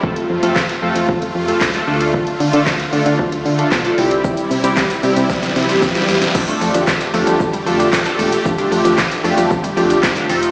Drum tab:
CC |--------------------------------|--------------------------------|--------------------------------|x-------------------------------|
HH |--x---x---x---x---x---x---x---x-|--x-o-x---x-o-x---x-o-x---x-o-x-|--x-o-x---x-o-x---x-o-x---x-o-x-|--x-o-x---x-o-x---x-o-x---x-o-x-|
SH |--------------------------------|--------------------------------|x-x-x-x-x-x-x-x-x-x-x-x-x-x-x-x-|x-x-x-x-x-x-x-x-x-x-x-x-x-x-x-x-|
CP |--------x---------------x-------|--------x---------------x-------|--------x-----------------------|--------x---------------x-------|
SD |--------o---------------o-------|--------o---------------o-------|--------o-------oooooooooooooooo|--------o---------------o-------|
BD |o-------o-------o-------o-------|o-------o-------o-------o-------|o-------o-------o-------o-------|o-------o-------o-------o-------|

CC |--------------------------------|
HH |--x-o-x---x-o-x---x-o-x---x-o-x-|
SH |x-x-x-x-x-x-x-x-x-x-x-x-x-x-x-x-|
CP |--------x---------------x-------|
SD |--------o---------------o-------|
BD |o-------o-------o-------o-------|